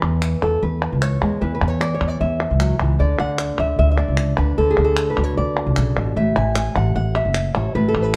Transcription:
Already playing: nylon-string guitar E3 B4
0.03 upright bass E2
0.22 clap
0.42 upright bass E2, nylon-string guitar A4, clap
0.63 upright bass E2, nylon-string guitar B4
0.82 clap
0.92 upright bass C#2
1.02 nylon-string guitar C#5, clap
1.22 upright bass E2, nylon-string guitar G#3, clap
1.41 upright bass E2, nylon-string guitar E3 B4
1.55 nylon-string guitar B4
1.61 upright bass E2
1.68 nylon-string guitar C#5
1.81 nylon-string guitar D5, clap
1.94 nylon-string guitar C#5
2.01 upright bass E2
2.08 nylon-string guitar D5
2.21 upright bass E2, nylon-string guitar E5
2.51 upright bass C#2
2.60 nylon-string guitar F#3, clap
2.80 upright bass C#2, nylon-string guitar E3
2.99 upright bass D2, nylon-string guitar D3 D5
3.19 upright bass D2, nylon-string guitar F#5
3.38 clap
3.59 upright bass D2, nylon-string guitar E5
3.79 upright bass D2, nylon-string guitar E5
3.92 nylon-string guitar E5
3.98 nylon-string guitar D5
4.08 upright bass C#2
4.17 clap
4.38 upright bass D2, nylon-string guitar D4 B4
4.58 upright bass D2, nylon-string guitar D3 A4
4.71 nylon-string guitar G#4
4.78 upright bass D2
4.84 nylon-string guitar A4
4.97 clap
5.10 nylon-string guitar B4
5.17 upright bass D2, nylon-string guitar F#4
5.24 nylon-string guitar C#5
5.37 upright bass D2, nylon-string guitar D5
5.67 upright bass C#2
5.76 upright bass B1, nylon-string guitar C#3, clap
5.97 upright bass A1, nylon-string guitar B2, clap
6.16 upright bass A1, nylon-string guitar A2 E5
6.36 upright bass A1, nylon-string guitar G#5
6.55 nylon-string guitar G#5, clap
6.76 upright bass A1, nylon-string guitar F#5, clap
6.95 upright bass A1, nylon-string guitar F#5
7.16 nylon-string guitar E5
7.25 upright bass F#1
7.34 clap
7.55 upright bass A1, nylon-string guitar E4 C#5, clap
7.75 upright bass A1, nylon-string guitar A2 B4
7.88 nylon-string guitar A4
7.94 upright bass A1
8.02 nylon-string guitar B4

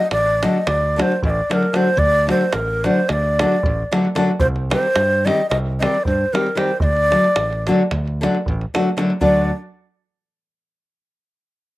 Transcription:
Already playing: ney D#5
0.11 fingered electric bass A1, ney D5, davul high
0.42 nylon-string guitar D3 F#3 A3 D4 F#4, ney D#5, davul high
0.67 fingered electric bass D2, ney D5, davul high
0.96 nylon-string guitar D3 F#3 A3 D4 F#4, ney D5, davul high
1.02 ney C5
1.12 davul high
1.23 fingered electric bass A1, ney D#5, davul low
1.30 ney D5
1.50 nylon-string guitar D3 F#3 A3 D4 F#4, ney A#4, davul high
1.63 davul high
1.73 nylon-string guitar D3 F#3 A3 D4 F#4, ney C5, davul high
1.97 fingered electric bass D2, ney D5, davul low
2.13 davul high
2.27 nylon-string guitar D3 F#3 A3 D4 F#4, ney C5, davul high
2.41 davul high
2.53 fingered electric bass A1, ney A#4, davul high
2.84 nylon-string guitar D3 F#3 A3 D4 F#4, ney C5, davul high
3.09 fingered electric bass D2, ney D5 D#5, davul high
3.39 nylon-string guitar D3 F#3 A3 D4 F#4, davul high
3.52 davul high
3.63 fingered electric bass A1, davul low
3.91 nylon-string guitar D3 F#3 A3 D4 F#4, davul high
4.05 davul high
4.15 nylon-string guitar D3 F#3 A3 D4 F#4, davul high
4.40 fingered electric bass C2, ney C5, davul low
4.56 davul high
4.70 nylon-string guitar D#3 G3 C4 D#4 G4, ney C5, davul high
4.83 davul high
4.96 fingered electric bass G2, davul high
5.25 nylon-string guitar D#3 G3 C4 D#4 G4, ney D#5, davul high
5.49 fingered electric bass C2, ney D#5, davul high
5.79 nylon-string guitar D#3 G3 C4 D#4 G4, ney D5 D#5, davul high
5.94 davul high
6.05 fingered electric bass G2, ney C5, davul low
6.33 nylon-string guitar D#3 G3 C4 D#4 G4, ney A#4, davul high
6.46 davul high
6.55 nylon-string guitar D#3 G3 C4 D#4 G4, ney C5, davul high
6.80 fingered electric bass D2, ney D5 D#5, davul low
6.96 davul high
7.11 nylon-string guitar D3 F#3 A3 D4 F#4, davul high
7.24 davul high
7.36 fingered electric bass A1, davul high
7.53 davul high
7.67 nylon-string guitar D3 F#3 A3 D4 F#4, davul high
7.91 fingered electric bass D2, davul high, davul low
8.08 davul high
8.21 nylon-string guitar D3 F#3 A3 D4 F#4, davul high
8.35 davul high
8.46 fingered electric bass A1, davul low
8.61 davul high
8.74 nylon-string guitar D3 F#3 A3 D4 F#4, davul high
8.97 nylon-string guitar D3 F#3 A3 D4 F#4, davul high
9.10 davul high
9.21 fingered electric bass D2, nylon-string guitar F#3 A3 D4 F#4, ney D5, davul low

